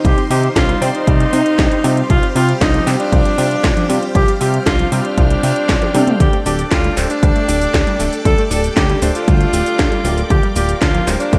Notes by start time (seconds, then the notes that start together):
Already playing: D#4 G4 C5 D#5 C6
0.05 C2 G3 G4 F5, kick, closed hi-hat
0.18 C4, closed hi-hat
0.30 C3 D#4 G4 C5 D#5, open hi-hat
0.43 closed hi-hat
0.56 C2 F4 G4, kick, snare, clap, closed hi-hat
0.69 G3, closed hi-hat
0.82 C3 C4 D#4 G4 C5 D5, open hi-hat
0.95 D#4, closed hi-hat
1.07 C2 G3, kick, closed hi-hat
1.20 C4, closed hi-hat
1.33 C3 D#4 G4 C5 D#5, open hi-hat
1.46 closed hi-hat
1.59 C2 G4, kick, snare, clap, closed hi-hat
1.71 G3, closed hi-hat
1.84 C3 G3 C4 F4 G4, open hi-hat
1.97 closed hi-hat
2.10 C2 F3 F4 G5 F6, kick, closed hi-hat
2.23 G3, closed hi-hat
2.35 C3 G3 C4 F4 G4, open hi-hat
2.49 closed hi-hat
2.61 C2 D#4 F4, kick, snare, clap, closed hi-hat
2.74 F3, closed hi-hat
2.87 C3 G3 C4 F4 G4, clap, open hi-hat
3.00 D4, closed hi-hat
3.12 C2 F3, kick, closed hi-hat
3.25 G3, closed hi-hat
3.38 C3 G3 C4 F4 G4, open hi-hat
3.51 closed hi-hat
3.64 C2 F4, kick, snare, clap, closed hi-hat
3.77 F3, closed hi-hat
3.89 C3 G3 C4 F4 G4, open hi-hat
4.03 closed hi-hat
4.15 C2 F3 G4, kick, closed hi-hat
4.28 G3, closed hi-hat
4.41 C3 G3 C4 F4 G4, open hi-hat
4.54 closed hi-hat
4.66 C2 F4, kick, snare, clap, closed hi-hat
4.79 F3, closed hi-hat
4.92 C3 G3 C4 F4 G4, open hi-hat
5.05 D4, closed hi-hat
5.18 C2 F3, kick, closed hi-hat
5.30 G3, closed hi-hat
5.43 C3 G3 C4 F4 G4, open hi-hat
5.56 closed hi-hat
5.69 C2 F4, kick, snare, clap, closed hi-hat
5.82 F3, closed hi-hat, high tom
5.94 C3 G3 D4 G4 A4 D5, open hi-hat, mid tom
6.07 closed hi-hat, mid tom
6.20 D2 G3 G4 A4 D5 D6, kick, closed hi-hat, cabasa
6.33 A3, closed hi-hat
6.46 D1 D4 G4 A4 D5, open hi-hat, cabasa
6.59 closed hi-hat, cabasa
6.71 D2 F4 G4, kick, snare, clap, closed hi-hat, cabasa
6.84 G3, closed hi-hat
6.97 D1 A3 D4 G4 A4 C5, clap, open hi-hat, cabasa
7.10 D4, closed hi-hat, cabasa
7.23 D2 G3, kick, closed hi-hat, cabasa
7.36 A3, closed hi-hat
7.48 D1 D4 G4 A4 D5, open hi-hat, cabasa
7.62 closed hi-hat, cabasa
7.74 D2 G4, kick, snare, clap, closed hi-hat, cabasa
7.87 G3, closed hi-hat
7.99 D1 A3 D4 G4 A4 D5, open hi-hat, cabasa
8.13 closed hi-hat, cabasa
8.25 D2 G3 A4, kick, closed hi-hat, cabasa
8.38 A3, closed hi-hat
8.51 D1 D4 G4 A4 D5, open hi-hat, cabasa
8.64 closed hi-hat, cabasa
8.77 D2 G4, kick, snare, clap, closed hi-hat, cabasa
8.90 G3, closed hi-hat
9.02 D1 A3 D4 G4 A4 C5, open hi-hat, cabasa
9.15 F4, closed hi-hat, cabasa
9.28 D2 G3, kick, closed hi-hat, cabasa
9.41 A3, closed hi-hat
9.53 D1 D4 G4 A4 D5, open hi-hat, cabasa
9.66 closed hi-hat, cabasa
9.79 D2 G4, kick, snare, clap, closed hi-hat, cabasa
9.92 G3, closed hi-hat
10.05 D1 A3 F4 G4 A#4 D5, open hi-hat, cabasa
10.18 closed hi-hat, cabasa
10.30 D2 F3 G4 A#4 F5, kick, closed hi-hat, cabasa
10.43 G3, closed hi-hat
10.56 D1 A#3 F4 G4 A#4 D5, open hi-hat, cabasa
10.69 closed hi-hat, cabasa
10.82 D2 D4 F4, kick, snare, clap, closed hi-hat, cabasa
10.94 F3, closed hi-hat
11.07 D1 G3 F4 G4 A#4 C5, clap, open hi-hat, cabasa
11.20 D4, closed hi-hat, cabasa
11.33 D2 F3, kick, closed hi-hat, cabasa